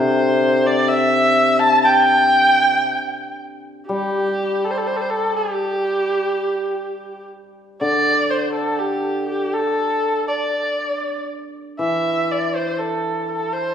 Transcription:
Already playing: C3 D3 C5
0.66 D5
0.88 E5
1.59 A5
1.82 G5 A5
3.87 G3 G4
4.64 A4
4.70 C5
4.78 A4
4.86 C5
4.96 A4
5.01 C5
5.10 A4
5.36 G4
7.81 D3 D5
8.30 C5
8.53 A4
8.79 G4
9.29 G4
9.54 A4
10.28 D5
11.79 E3 E5
12.31 D5
12.55 C5
12.79 A4
13.31 A4
13.53 C5

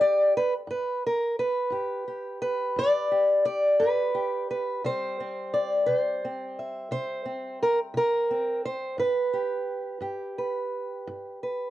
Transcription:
Already playing: D3 G4 A4
0.01 D5
0.37 B4
0.67 G2 B4
1.07 A#4
1.39 B4
1.70 G2 G4
2.08 G4
2.42 B4
2.76 G2 D5
3.12 G4
3.45 D5
3.80 G2 B4
4.15 G4
4.51 B4
4.84 C3 G3 C4 C5
5.20 C4
5.54 D5
5.86 C3 C5
6.25 C4
6.59 E5
6.91 C3 C5
7.26 C4
7.63 A#4
7.94 C3 A#4
8.31 C4
8.66 C5
8.98 G2 B4
9.33 G4
10.01 G2 G4
10.38 B4
11.07 G2
11.43 B4

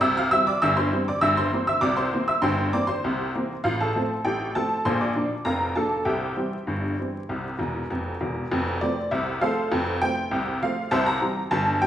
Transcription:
0.01 C2 C3 E5 E6
0.17 F5 F6
0.31 E3 G3 C4 E5 E6
0.47 D5 D6
0.62 G1 G2 E5 E6
0.77 C5 C6
0.92 E3 G3 C4
1.08 D5 D6
1.21 G1 G2 E5 E6
1.37 C5 C6
1.53 E3 A#3 C4
1.67 E5 E6
1.81 C2 C3 D5 D6
1.97 C5 C6
2.13 E3 A#3 C4
2.28 E5 E6
2.42 G1 G2 C5 G5 C6
2.73 E3 A#3 C4 D5 D6
2.87 C5 C6
3.04 C2 C3
3.34 E3 A#3 C4
3.64 A1 A2 F4 F5
3.81 A4 A5
3.95 F3 A3 C4
4.25 A1 A2 G4 G5
4.55 F3 A3 C4 A4 A5
4.85 A#1 A#2 C5 C6
5.01 D5 D6
5.15 F3 A#3 D4
5.45 F1 F2 A#4 F5 A#5
5.76 F3 A#3 D4 A4 A5
6.05 C2 C3 G4 E5 G5
6.37 E3 G3 C4
6.67 G1 G2
6.99 E3 G3 C4
7.29 C2 C3
7.59 E1 E2
7.90 F1 F2
8.21 E1 E2
8.52 F1 F2
8.81 F3 A3 C4 D5
9.11 C2 C3 E5
9.41 F3 A3 C4 A4 C5 F5
9.72 F1 F2
10.02 F3 A3 C4 G5
10.31 C2 C3
10.62 F3 A3 C4 F5
10.91 C2 C3 C5 E5 A5
11.06 A#5
11.21 E3 G3 C4
11.51 G1 G2 A5
11.82 E3 G3 C4 G5

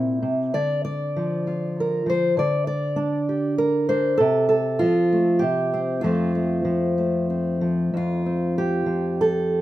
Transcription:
Already playing: A#2 C3 C4 E4
0.22 C3
0.54 D3 D5
0.85 D5
1.16 F3
1.47 F4
1.80 A#4
2.06 F3 C5
2.37 D3 D5
2.67 D5
2.96 D4
3.29 G4
3.58 A#4
3.89 D4 C5
4.18 C3 A4
4.49 A4
4.79 F3 F4
5.13 A3
5.39 C3 G4
5.74 C4
6.01 F2 F3 A3 F4
6.06 C4
6.35 A3
6.65 F3
6.98 A3
7.30 C4
7.61 F3
7.94 F2 F4
8.26 C4
8.58 G4
8.86 F3
9.21 A4

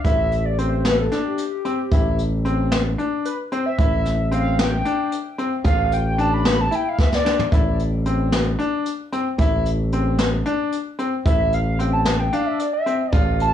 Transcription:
0.04 A1 E4 E5, kick, closed hi-hat
0.32 closed hi-hat
0.45 D5
0.58 C4 C5, closed hi-hat
0.85 B4, snare, closed hi-hat
0.98 A4
1.12 D4, snare, closed hi-hat
1.25 G4
1.38 closed hi-hat
1.65 C4, closed hi-hat
1.91 A1 E4, kick, closed hi-hat
2.18 closed hi-hat
2.45 C4, closed hi-hat
2.72 snare, closed hi-hat
2.98 D4, closed hi-hat
3.25 B4, closed hi-hat
3.52 C4 C5, closed hi-hat
3.66 E5
3.78 A1 E4 E5, kick, closed hi-hat
4.06 snare, closed hi-hat
4.31 C4 F5, closed hi-hat
4.59 G5, snare, closed hi-hat
4.85 D4, closed hi-hat
5.12 closed hi-hat
5.38 C4, closed hi-hat
5.64 A1 F4 F5, kick, closed hi-hat
5.92 G5, closed hi-hat
6.18 D4 A5, closed hi-hat
6.34 B5
6.45 B5, snare, closed hi-hat
6.61 A5
6.71 E4 G5, closed hi-hat
6.89 F5
6.99 E5, kick, snare
7.12 D5, snare
7.25 D4, snare
7.39 floor tom
7.52 A1 E4, kick, closed hi-hat
7.79 closed hi-hat
8.06 C4, closed hi-hat
8.32 snare, closed hi-hat
8.59 D4, closed hi-hat
8.86 closed hi-hat
9.12 C4, closed hi-hat
9.38 A1 E4, kick, closed hi-hat
9.66 closed hi-hat
9.92 C4, closed hi-hat
10.19 snare, closed hi-hat
10.46 D4, closed hi-hat
10.72 closed hi-hat
10.99 C4, closed hi-hat
11.26 A1 E4 E5, kick, closed hi-hat
11.53 F5, closed hi-hat
11.79 C4 G5, closed hi-hat
11.93 A5
12.05 A5, snare, closed hi-hat
12.19 G5
12.33 D4 F5, closed hi-hat
12.46 E5
12.59 D5, closed hi-hat
12.73 E5
12.86 C4, closed hi-hat
13.12 A1 F4, kick, closed hi-hat
13.40 A5, closed hi-hat

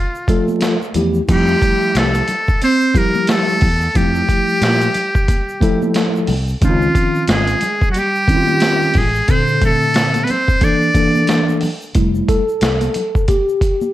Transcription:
Already playing: F4
0.15 shaker
0.28 F3 A3 F4 A4, kick, closed hi-hat, shaker
0.48 high conga, shaker
0.61 snare, closed hi-hat, shaker
0.82 shaker
0.94 E2 F3 A3 E4 G4, closed hi-hat, low conga, shaker
1.14 shaker
1.28 F2 F3 G3 A3 E4 G4, kick, closed hi-hat, crash, shaker
1.32 G4
1.47 shaker
1.62 kick, closed hi-hat, shaker
1.82 shaker
1.95 C2 A3 A4, snare, closed hi-hat, shaker
2.14 closed hi-hat, shaker
2.28 closed hi-hat, low conga, shaker
2.48 kick, shaker
2.62 C4 C5, closed hi-hat, high conga, shaker
2.81 shaker
2.94 F3 G3 A#3 E4 G4 A#4, kick, closed hi-hat, shaker
3.15 high conga, shaker
3.27 A3 A4, snare, closed hi-hat, shaker
3.49 shaker
3.61 E2, kick, open hi-hat, low conga, shaker
3.81 shaker
3.94 F2 F3 G3 A3 E4 G4, kick, closed hi-hat, shaker
4.15 shaker
4.29 kick, closed hi-hat, shaker
4.49 shaker
4.61 A#2, snare, closed hi-hat, shaker
4.81 closed hi-hat, shaker
4.94 closed hi-hat, low conga, shaker
5.15 kick, shaker
5.28 kick, closed hi-hat, high conga, shaker
5.49 shaker
5.61 F3 A3 E4 A4, kick, closed hi-hat, shaker
5.82 high conga, shaker
5.94 snare, closed hi-hat, shaker
6.16 shaker
6.27 C2, open hi-hat, low conga, shaker
6.48 shaker
6.61 C#2 D#3 F3 C4 C#4 D#4 F4, kick, closed hi-hat, shaker
6.70 F4
6.81 shaker
6.95 kick, closed hi-hat, shaker
7.15 shaker
7.28 G#1 G#3 G#4, snare, closed hi-hat, shaker
7.47 closed hi-hat, shaker
7.61 closed hi-hat, low conga, shaker
7.82 kick, shaker
7.89 F#3 F#4
7.94 G3, closed hi-hat, high conga, shaker
7.99 G4
8.15 shaker
8.27 D#3 C4 C#4 E4, kick, closed hi-hat, shaker
8.36 F4
8.47 high conga, shaker
8.60 snare, closed hi-hat, shaker
8.82 shaker
8.94 A1 G#3, kick, open hi-hat, low conga, shaker
8.98 G#4
9.15 shaker
9.28 A#2 D3 C4 A4 C5, kick, closed hi-hat, shaker
9.48 shaker
9.61 A3 A4, kick, closed hi-hat, low conga, shaker
9.82 shaker
9.94 snare, closed hi-hat, shaker
10.14 closed hi-hat, high conga, shaker
10.23 B3 B4
10.27 C4 C5, closed hi-hat, high conga, low conga, shaker
10.48 kick, shaker
10.61 E3 A#3 D4 A4 D5, kick, closed hi-hat, high conga, shaker
10.82 shaker
10.94 E3 A#3 D4 A4, kick, closed hi-hat, shaker
11.15 high conga, shaker
11.27 snare, closed hi-hat, shaker
11.49 high conga, shaker
11.61 open hi-hat, low conga, shaker
11.82 shaker
11.95 F1 G3 A3 E4, kick, closed hi-hat, shaker
12.15 shaker
12.29 A4, kick, closed hi-hat, shaker
12.49 shaker
12.61 C2, snare, closed hi-hat, shaker
12.81 closed hi-hat, high conga, shaker
12.94 closed hi-hat, low conga, shaker
13.15 kick, shaker
13.28 G4, kick, closed hi-hat, high conga, shaker
13.49 shaker
13.61 kick, closed hi-hat, shaker
13.81 high conga, shaker

